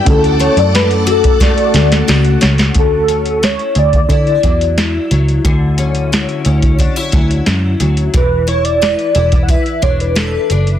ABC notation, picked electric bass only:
X:1
M:4/4
L:1/16
Q:1/4=89
K:D
V:1 name="Picked electric bass" clef=bass
D,,3 F,,6 z D,,2 C,,2 C,,2 | D,,4- D,, z D,,2 D,2 E,,4 C,,2 | D,,4- D,, z D,,3 z D,,2 F,,2 D,,2 | E,,,4- E,,, z E,,,3 z E,,,4 F,,,2 |]